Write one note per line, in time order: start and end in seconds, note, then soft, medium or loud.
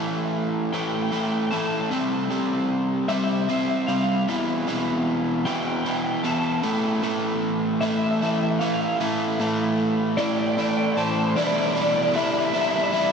0.00 0.72 A2 medium
0.00 0.73 E3 medium
0.00 0.73 A3 medium
0.73 1.11 A2 medium
0.73 1.12 E3 loud
0.73 1.12 A3 medium
0.73 0.80 G5 medium
0.81 0.87 G5 medium
0.88 0.94 G5 medium
0.95 1.02 G5 medium
1.03 1.10 G5 medium
1.10 1.50 A2 medium
1.10 1.52 E3 medium
1.10 1.52 A3 medium
1.10 1.17 G5 medium
1.17 1.24 G5 medium
1.24 1.31 G5 medium
1.32 1.38 G5 medium
1.38 1.45 G5 medium
1.47 1.50 G5 medium
1.47 1.57 A5 medium
1.51 1.89 A2 medium
1.51 1.91 E3 medium
1.51 1.90 A3 medium
1.58 1.65 A5 medium
1.66 1.72 A5 medium
1.72 1.80 A5 medium
1.81 1.88 A5 medium
1.91 2.29 C3 medium
1.91 2.30 G3 medium
1.91 2.30 C4 loud
2.30 3.08 C3 medium
2.30 3.08 G3 medium
2.30 3.09 C4 medium
3.08 3.47 C3 loud
3.08 3.48 G3 loud
3.08 3.49 C4 loud
3.08 3.16 E5 medium
3.17 3.23 E5 medium
3.23 3.30 E5 medium
3.31 3.38 E5 medium
3.39 3.44 E5 medium
3.45 3.87 C3 medium
3.45 3.52 E5 medium
3.49 3.88 G3 medium
3.49 3.88 C4 medium
3.49 3.61 E5 medium
3.61 3.68 E5 medium
3.68 3.76 E5 medium
3.77 3.84 E5 medium
3.87 4.25 C3 medium
3.87 4.26 G3 medium
3.87 4.26 C4 medium
3.87 3.94 F5 loud
3.95 4.02 F5 medium
4.03 4.08 F5 medium
4.09 4.16 F5 medium
4.17 4.24 F5 medium
4.28 4.65 E2 medium
4.28 4.66 B2 loud
4.28 4.68 E3 loud
4.66 5.44 E2 medium
4.66 5.45 B2 medium
4.66 5.46 E3 medium
5.45 5.84 E2 medium
5.45 5.84 B2 loud
5.45 5.86 E3 loud
5.45 5.53 G5 medium
5.53 5.60 G5 medium
5.61 5.67 G5 medium
5.68 5.75 G5 medium
5.75 5.81 G5 medium
5.82 6.23 E2 medium
5.82 6.23 B2 medium
5.82 5.89 G5 medium
5.86 6.25 E3 medium
5.86 5.97 G5 medium
5.97 6.04 G5 medium
6.04 6.11 G5 medium
6.11 6.18 G5 medium
6.19 6.23 G5 medium
6.24 6.61 E2 medium
6.24 6.62 B2 medium
6.24 6.64 E3 loud
6.24 6.31 A5 loud
6.31 6.38 A5 medium
6.38 6.46 A5 loud
6.46 6.52 A5 medium
6.53 6.60 A5 medium
6.63 7.02 A2 medium
6.63 7.03 E3 loud
6.63 7.04 A3 loud
7.03 7.80 A2 medium
7.03 7.82 E3 medium
7.03 7.82 A3 loud
7.81 8.20 A2 loud
7.81 8.22 E3 loud
7.81 8.22 A3 loud
7.81 7.87 E5 medium
7.87 7.95 E5 medium
7.96 8.03 E5 medium
8.04 8.10 E5 medium
8.11 8.18 E5 medium
8.19 8.59 A2 medium
8.19 8.61 E3 medium
8.19 8.25 E5 medium
8.23 8.61 A3 medium
8.23 8.32 E5 medium
8.33 8.40 E5 medium
8.42 8.48 E5 medium
8.48 8.56 E5 medium
8.59 8.99 A2 medium
8.59 9.00 E3 medium
8.59 9.00 A3 loud
8.59 8.65 F5 loud
8.65 8.73 F5 medium
8.74 8.81 F5 loud
8.81 8.88 F5 medium
8.89 8.96 F5 medium
9.00 9.38 A2 medium
9.00 9.39 E3 loud
9.00 9.40 A3 loud
9.40 10.17 A2 medium
9.40 10.17 E3 medium
9.40 10.18 A3 medium
10.17 10.56 A2 loud
10.17 10.57 E3 loud
10.17 10.57 A3 loud
10.17 10.24 D5 loud
10.17 10.24 G5 medium
10.24 10.31 D5 medium
10.24 10.32 G5 medium
10.32 10.39 D5 medium
10.32 10.39 G5 medium
10.39 10.46 D5 medium
10.39 10.46 G5 medium
10.47 10.53 D5 medium
10.47 10.54 G5 medium
10.53 10.95 A2 medium
10.53 10.61 D5 medium
10.53 10.61 G5 medium
10.58 10.96 E3 medium
10.58 10.97 A3 loud
10.58 10.68 D5 medium
10.58 10.69 G5 medium
10.69 10.77 D5 medium
10.69 10.77 G5 medium
10.77 10.83 D5 medium
10.77 10.84 G5 medium
10.84 10.91 D5 medium
10.84 10.91 G5 medium
10.92 10.99 D5 medium
10.92 10.97 G5 medium
10.97 11.34 A2 medium
10.97 11.34 E3 medium
10.97 11.34 A3 loud
10.97 11.05 C5 medium
10.97 11.04 A5 loud
11.04 11.12 C5 medium
11.04 11.10 A5 medium
11.11 11.20 C5 medium
11.11 11.18 A5 medium
11.19 11.29 C5 medium
11.19 11.26 A5 medium
11.26 11.38 C5 medium
11.26 11.34 A5 medium
11.36 12.19 E2 loud
11.36 12.15 B2 medium
11.36 11.78 E3 loud
11.36 11.77 G3 loud
11.36 11.76 D4 loud
11.36 11.74 E4 loud
11.36 11.44 D5 loud
11.44 11.49 D5 medium
11.50 11.57 D5 medium
11.59 11.66 D5 medium
11.67 11.72 D5 loud
11.73 12.16 D4 medium
11.73 12.17 E4 medium
11.73 11.80 D5 medium
11.77 12.13 E3 medium
11.77 12.15 G3 medium
11.81 11.88 D5 medium
11.89 11.95 D5 medium
11.96 12.02 D5 medium
12.03 12.10 D5 medium
12.14 12.55 E3 medium
12.14 12.54 G3 medium
12.14 12.54 D4 medium
12.14 12.52 E4 medium
12.14 12.23 E5 loud
12.24 12.31 E5 medium
12.31 12.38 E5 medium
12.38 12.45 E5 medium
12.45 12.53 E5 medium
12.53 12.91 E3 medium
12.53 12.92 G3 medium
12.53 12.94 D4 medium
12.53 12.94 E4 medium
12.53 12.61 E5 medium
12.61 12.68 E5 loud
12.69 12.76 E5 medium
12.76 12.83 E5 loud
12.84 12.91 E5 medium
12.92 13.12 E3 medium
12.92 13.12 G3 medium
12.92 13.12 D4 medium
12.92 13.12 E4 medium
12.92 12.99 E5 loud
12.99 13.05 E5 medium
13.06 13.12 E5 loud